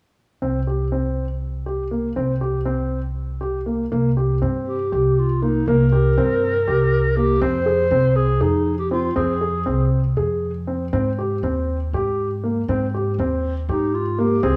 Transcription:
0.41 upright bass C2, grand piano C4
0.67 grand piano G4
0.92 grand piano C4
1.66 grand piano G4
1.91 grand piano A#3
2.16 upright bass C2, grand piano C4
2.41 grand piano G4
2.66 grand piano C4
3.41 grand piano G4
3.66 grand piano A#3
3.91 upright bass C2, grand piano A#3
4.17 grand piano G4
4.42 upright bass G2, grand piano C4
4.68 clarinet G4
4.92 upright bass C2, grand piano G4
5.19 clarinet F4
5.42 grand piano A#3, clarinet D#4
5.67 upright bass C2, grand piano A#3, clarinet A#4
5.92 grand piano G4
6.18 upright bass G2, grand piano C4
6.68 upright bass C2, grand piano G4
7.17 grand piano A#3, clarinet G4
7.42 upright bass F2, grand piano C4, clarinet C5
7.66 grand piano G#4
7.91 upright bass C2, grand piano C4
8.16 clarinet G#4
8.41 upright bass F2, clarinet D#4, grand piano G#4
8.78 clarinet G4
8.91 grand piano C4, clarinet F4
9.16 upright bass F2, grand piano C4, clarinet G#4
9.41 grand piano G#4
9.66 upright bass C2, grand piano C4
10.17 upright bass F2, grand piano G#4
10.67 grand piano C4
10.93 upright bass G#2, grand piano C4
11.19 grand piano G4
11.43 upright bass D#2, grand piano C4
11.93 upright bass G#2, grand piano G4
12.44 grand piano A#3
12.68 upright bass G#2, grand piano C4
12.94 grand piano G4
13.18 upright bass D#2, grand piano C4
13.68 upright bass G#2, clarinet D#4, grand piano G4
13.94 clarinet F4
14.18 grand piano A#3, clarinet G4
14.43 upright bass C#2, grand piano C4, clarinet G#4

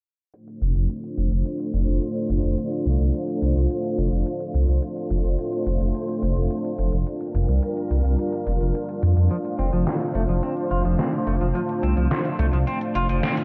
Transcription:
0.33 string machine A3 D4 F4 C5, closed hi-hat
0.48 closed hi-hat
0.62 detuned saw bass F1, closed hi-hat
0.76 detuned saw bass F1, closed hi-hat
0.90 closed hi-hat
1.04 closed hi-hat
1.18 detuned saw bass F1, closed hi-hat
1.32 detuned saw bass F1, closed hi-hat
1.46 closed hi-hat
1.60 closed hi-hat
1.74 detuned saw bass F1, closed hi-hat
1.88 detuned saw bass F1, closed hi-hat
2.02 closed hi-hat
2.16 closed hi-hat
2.30 detuned saw bass F1, closed hi-hat
2.44 detuned saw bass F1, closed hi-hat
2.58 closed hi-hat
2.72 closed hi-hat
2.86 detuned saw bass C2, closed hi-hat
3.00 detuned saw bass C2, closed hi-hat
3.14 closed hi-hat
3.28 closed hi-hat
3.42 detuned saw bass C2, closed hi-hat
3.56 detuned saw bass C2, closed hi-hat
3.70 closed hi-hat
3.84 closed hi-hat
3.98 detuned saw bass F1, closed hi-hat
4.12 detuned saw bass F1, closed hi-hat
4.26 closed hi-hat
4.40 closed hi-hat
4.54 detuned saw bass C2, closed hi-hat
4.68 detuned saw bass C2, closed hi-hat
4.82 string machine A3 D4 C5, closed hi-hat
4.96 closed hi-hat
5.10 detuned saw bass F1, closed hi-hat
5.24 detuned saw bass F1, closed hi-hat
5.38 closed hi-hat
5.53 closed hi-hat
5.66 detuned saw bass F1, closed hi-hat
5.80 detuned saw bass F1, closed hi-hat
5.95 closed hi-hat
6.09 closed hi-hat
6.22 detuned saw bass F1, closed hi-hat
6.36 detuned saw bass F1, closed hi-hat
6.50 closed hi-hat
6.65 closed hi-hat
6.78 detuned saw bass F1, closed hi-hat
6.93 detuned saw bass F1, closed hi-hat
7.06 string machine G3 F4 A#4, closed hi-hat
7.21 closed hi-hat
7.34 detuned saw bass F1, closed hi-hat
7.49 detuned saw bass C2, closed hi-hat
7.63 closed hi-hat
7.77 closed hi-hat
7.91 detuned saw bass C2, closed hi-hat
8.05 detuned saw bass C2, closed hi-hat
8.19 closed hi-hat
8.33 closed hi-hat
8.47 detuned saw bass F1, closed hi-hat
8.61 detuned saw bass F1, closed hi-hat
8.75 closed hi-hat
8.89 closed hi-hat
9.03 detuned saw bass F2, closed hi-hat
9.17 detuned saw bass F2, closed hi-hat
9.31 clean electric guitar F3, string machine A3 C5, closed hi-hat
9.45 closed hi-hat
9.59 detuned saw bass F1, clean electric guitar C4, closed hi-hat
9.73 detuned saw bass F1, clean electric guitar F3, closed hi-hat
9.87 clean electric guitar C4, snare, closed hi-hat
10.01 closed hi-hat
10.15 detuned saw bass F1, clean electric guitar A3, closed hi-hat
10.29 detuned saw bass F1, clean electric guitar F3, closed hi-hat
10.43 clean electric guitar C4, closed hi-hat
10.57 closed hi-hat
10.71 detuned saw bass F1, clean electric guitar F4, closed hi-hat
10.85 detuned saw bass F1, clean electric guitar F3, closed hi-hat
10.99 clean electric guitar C4, snare, closed hi-hat
11.13 closed hi-hat
11.27 detuned saw bass F1, clean electric guitar A3, closed hi-hat
11.41 detuned saw bass F1, clean electric guitar F3, closed hi-hat
11.55 clean electric guitar F3, closed hi-hat
11.69 closed hi-hat
11.83 detuned saw bass C2, clean electric guitar C4, closed hi-hat
11.97 detuned saw bass C2, clean electric guitar F3, closed hi-hat
12.11 clean electric guitar C4, snare, closed hi-hat
12.25 closed hi-hat
12.39 detuned saw bass C2, clean electric guitar A3, closed hi-hat
12.53 detuned saw bass C2, clean electric guitar F3, closed hi-hat
12.67 clean electric guitar C4, closed hi-hat
12.81 closed hi-hat
12.95 detuned saw bass F1, clean electric guitar F4, closed hi-hat
13.09 detuned saw bass F1, clean electric guitar F3, closed hi-hat
13.23 clean electric guitar C4, snare, closed hi-hat
13.37 closed hi-hat

